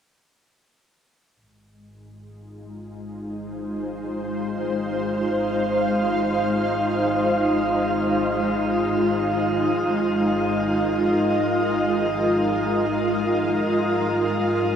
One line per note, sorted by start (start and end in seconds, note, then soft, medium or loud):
1.41 13.68 G#1 medium
1.41 13.72 G#3 medium
1.87 13.72 D#4 medium
2.04 14.76 F4 medium
2.81 9.88 C5 medium
3.66 9.95 F5 medium
9.67 14.76 A#4 medium
9.72 13.72 D#5 medium
13.71 14.76 G#1 medium
13.71 14.76 G3 medium
14.39 14.76 D4 medium